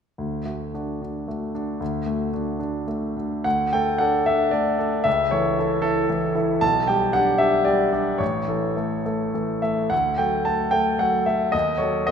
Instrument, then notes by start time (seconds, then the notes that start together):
grand piano
0.18 D2
0.46 A3 F#4
0.74 D4 F#4
1.02 D4 F#4
1.28 A3 F#4
1.55 D4 F#4
1.80 D2
2.06 A3 F#4
2.33 D4 F#4
2.59 D4 F#4
2.87 A3 F#4
3.17 D4 F#4
3.44 D2 F#5
3.73 A3 A4 G5
3.98 D4 A4 F#5
4.26 D4 A4 E5
4.51 A3 A4 D5
4.79 D4 A4
5.04 C#2 E5
5.31 E3 A4 C#5
5.58 E4 A4
5.82 E4 A4
6.10 E3 A4
6.35 E4 A4
6.61 B1 A5
6.87 G3 G4 G5
7.13 D4 G4 F#5
7.38 D4 G4 E5
7.65 G3 G4 D5
7.93 D4 G4
8.18 A1 C#5
8.48 E3 A4
8.77 A3 A4
9.06 A3 A4
9.34 E3 A4
9.62 A3 A4 E5
9.90 D2 F#5
10.18 F#3 A4 G5
10.45 A3 A4 A5
10.71 A3 A4 G5
10.99 F#3 A4 F#5
11.26 A3 A4 E5
11.52 D#2 D#5
11.78 F#3 A4 C#5
12.07 B3 D#5